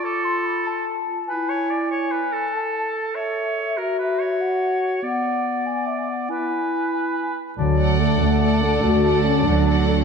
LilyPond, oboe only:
\new Staff \with { instrumentName = "Oboe" } { \time 12/8 \key d \lydian \tempo 4. = 96 a'2~ a'8 r8 b'8 cis''8 d''8 cis''8 b'8 a'8~ | a'4. cis''4. ais'8 b'8 cis''2 | d''2. b'2~ b'8 r8 | d''1. | }